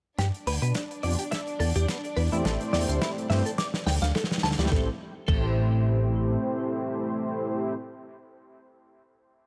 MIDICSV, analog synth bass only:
0, 0, Header, 1, 2, 480
1, 0, Start_track
1, 0, Key_signature, 0, "minor"
1, 0, Tempo, 566038
1, 159, Time_signature, 4, 2, 24, 8
1, 8029, End_track
2, 0, Start_track
2, 0, Title_t, "Analog synth bass"
2, 0, Program_c, 0, 38
2, 157, Note_on_c, 0, 43, 91
2, 265, Note_off_c, 0, 43, 0
2, 397, Note_on_c, 0, 38, 98
2, 505, Note_off_c, 0, 38, 0
2, 529, Note_on_c, 0, 47, 86
2, 617, Note_off_c, 0, 47, 0
2, 880, Note_on_c, 0, 41, 80
2, 986, Note_off_c, 0, 41, 0
2, 1358, Note_on_c, 0, 40, 82
2, 1465, Note_off_c, 0, 40, 0
2, 1491, Note_on_c, 0, 40, 78
2, 1578, Note_off_c, 0, 40, 0
2, 1838, Note_on_c, 0, 40, 98
2, 1945, Note_off_c, 0, 40, 0
2, 1970, Note_on_c, 0, 40, 98
2, 2058, Note_off_c, 0, 40, 0
2, 2079, Note_on_c, 0, 33, 98
2, 2186, Note_off_c, 0, 33, 0
2, 2321, Note_on_c, 0, 40, 101
2, 2427, Note_off_c, 0, 40, 0
2, 2451, Note_on_c, 0, 38, 87
2, 2538, Note_off_c, 0, 38, 0
2, 2799, Note_on_c, 0, 43, 83
2, 2906, Note_off_c, 0, 43, 0
2, 3278, Note_on_c, 0, 38, 85
2, 3385, Note_off_c, 0, 38, 0
2, 3408, Note_on_c, 0, 38, 79
2, 3497, Note_off_c, 0, 38, 0
2, 3758, Note_on_c, 0, 38, 98
2, 3865, Note_off_c, 0, 38, 0
2, 3890, Note_on_c, 0, 38, 97
2, 3978, Note_off_c, 0, 38, 0
2, 4002, Note_on_c, 0, 33, 94
2, 4144, Note_off_c, 0, 33, 0
2, 4481, Note_on_c, 0, 33, 100
2, 5406, Note_off_c, 0, 33, 0
2, 8029, End_track
0, 0, End_of_file